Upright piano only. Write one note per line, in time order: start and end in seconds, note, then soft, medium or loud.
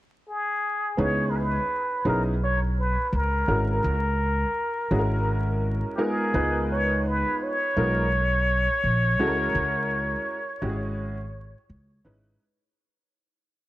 0.97 1.51 B3 medium
0.97 1.51 C#4 medium
0.97 1.52 D#4 medium
0.97 1.52 E4 medium
0.97 1.52 G#4 medium
2.05 2.33 B3 medium
2.05 2.33 C#4 medium
2.05 2.33 D#4 medium
2.05 2.33 E4 medium
2.05 2.33 G#4 medium
3.48 3.93 G#3 medium
3.48 3.93 C#4 medium
3.48 3.93 E4 medium
3.48 3.93 F#4 medium
3.48 3.93 A#4 medium
4.91 5.93 G#3 medium
4.91 5.93 C#4 medium
4.91 5.93 E4 medium
4.91 5.93 F#4 medium
4.91 5.00 G#4 medium
4.99 5.97 A#4 medium
5.98 6.32 G#3 medium
5.98 6.33 B3 medium
5.98 6.33 D#4 medium
5.98 6.33 F4 medium
5.98 7.00 A#4 medium
6.34 7.50 G#3 medium
6.34 7.50 B3 medium
6.34 7.50 D#4 medium
6.34 7.50 F4 medium
6.34 7.50 B4 medium
7.76 8.04 G#3 medium
7.76 8.04 B3 medium
7.76 8.05 D#4 medium
7.76 8.05 F4 medium
7.76 8.05 A#4 medium
9.19 10.36 G#3 medium
9.19 10.36 C#4 medium
9.19 10.36 E4 medium
9.19 10.36 F#4 medium
9.19 9.28 A4 medium
9.27 10.39 A#4 medium
10.62 11.16 G#3 medium
10.62 11.16 C#4 medium
10.62 11.16 E4 medium
10.62 11.16 F#4 medium
10.62 10.71 G4 medium
10.69 11.19 G#4 medium
12.05 12.41 G#3 medium
12.05 12.41 C#4 medium
12.05 12.41 D#4 medium
12.05 12.41 E4 medium
12.05 12.41 B4 medium